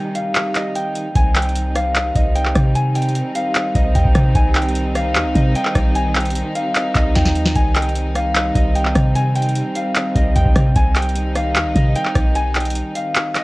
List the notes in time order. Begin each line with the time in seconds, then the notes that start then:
Already playing: C3 D#3 G3 D#4 D#5 F5 G5
0.15 F5, closed hi-hat
0.35 clap, closed hi-hat
0.55 D#5, clap, closed hi-hat
0.75 G5, closed hi-hat
0.95 closed hi-hat
1.15 C2 D#3 G3 C4 D#4 G#5, kick, closed hi-hat
1.35 G5, clap, closed hi-hat
1.42 closed hi-hat
1.49 closed hi-hat
1.55 closed hi-hat
1.75 F5, cross-stick, closed hi-hat
1.95 clap, closed hi-hat
2.15 C2 D#5, kick, closed hi-hat
2.35 G5, closed hi-hat
2.45 clap
2.55 C3, kick, cross-stick, closed hi-hat
2.75 G#5, closed hi-hat
2.95 G5, closed hi-hat
3.02 closed hi-hat
3.09 closed hi-hat
3.15 closed hi-hat
3.35 F5, closed hi-hat
3.55 clap, closed hi-hat
3.75 C2 D#5, kick, closed hi-hat
3.95 D#2 G5, kick, closed hi-hat
4.05 C2, kick
4.15 C3, kick, cross-stick, closed hi-hat
4.35 C2 G#5, kick, closed hi-hat
4.55 G5, clap, closed hi-hat
4.62 closed hi-hat
4.69 closed hi-hat
4.75 closed hi-hat
4.95 F5, cross-stick, closed hi-hat
5.15 D#2, clap, closed hi-hat
5.25 C2
5.35 C3 D#5, kick, closed hi-hat
5.55 G5, closed hi-hat
5.65 clap
5.75 B1, kick, cross-stick, closed hi-hat
5.95 G#5, closed hi-hat
6.15 G5, clap, closed hi-hat, open hi-hat
6.20 closed hi-hat
6.25 closed hi-hat
6.30 closed hi-hat
6.35 closed hi-hat
6.55 F5, closed hi-hat
6.75 clap, closed hi-hat
6.95 C2 D#5, kick, clap, closed hi-hat
7.15 D#2 G5, kick, snare, closed hi-hat
7.25 snare
7.35 closed hi-hat
7.45 snare
7.55 C2 G3 C4 G#5, kick, closed hi-hat
7.75 G5, clap, closed hi-hat
7.82 closed hi-hat
7.89 closed hi-hat
7.95 closed hi-hat
8.15 F5, cross-stick, closed hi-hat
8.35 clap, closed hi-hat
8.55 C2 D#5, kick, closed hi-hat
8.75 G5, closed hi-hat
8.85 clap
8.95 C3, kick, cross-stick, closed hi-hat
9.15 G#5, closed hi-hat
9.35 G5, closed hi-hat
9.42 closed hi-hat
9.49 closed hi-hat
9.55 closed hi-hat
9.75 F5, closed hi-hat
9.95 clap, closed hi-hat
10.15 C2 D#5, kick, closed hi-hat
10.35 D#2 G5, kick, closed hi-hat
10.45 C2, kick
10.55 C3, kick, cross-stick, closed hi-hat
10.75 C2 D#3 D#4 G#5, kick, closed hi-hat
10.95 G5, clap, closed hi-hat
11.02 closed hi-hat
11.09 closed hi-hat
11.15 closed hi-hat
11.35 F5, cross-stick, closed hi-hat
11.55 D#2, clap, closed hi-hat
11.65 C2
11.75 C3 D#5, kick, closed hi-hat
11.95 G5, closed hi-hat
12.05 clap
12.15 B1, kick, cross-stick, closed hi-hat
12.35 G#5, closed hi-hat
12.55 G5, clap, closed hi-hat, open hi-hat
12.60 closed hi-hat
12.65 closed hi-hat
12.70 closed hi-hat
12.75 closed hi-hat
12.95 F5, closed hi-hat
13.15 clap, closed hi-hat
13.35 D#5, clap, closed hi-hat